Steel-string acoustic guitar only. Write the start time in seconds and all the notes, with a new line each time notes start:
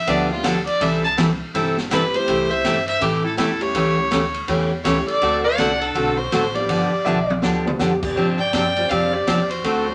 0.07 D3 F3 B3 D4 G4
0.43 D3 F3 B3 D4 G4
0.81 C3 E3 G3 C4 E4 A4
1.17 C3 E3 G3 C4 E4 A4
1.54 C3 E3 G3 C4 E4 A4
1.91 C3 E3 G3 C4 E4 A4
2.28 C3 E3 A3 E4 G4
2.64 C3 E3 A3 E4 G4
3.01 C3 E3 A3 E4 G4
3.37 C3 E3 A3 E4 G4
3.75 C#3 E3 A3 C#4 G4
4.11 C#3 E3 A3 C#4 G4
4.48 C#3 E3 A3 C#4 G4
4.85 C#3 E3 A3 C#4 G4
5.22 D3 A3 C4 F#4 A4
5.58 D3 A3 C4 F#4 A4
5.95 D3 A3 C4 F#4 A4
6.32 D3 A3 C4 F#4 A4
6.69 D3 F3 B3 D4 G4
7.05 D3 F3 B3 D4 G4
7.42 D3 F3 B3 D4 G4
7.79 D3 F3 B3 D4 G4
8.16 C3 F3 C4 D4 G4
8.53 C3 F3 C4 D4 G4
8.90 C3 F3 C4 D4 G4
9.27 C3 F3 C4 D4 G4
9.64 D3 A3 C4 F#4 A4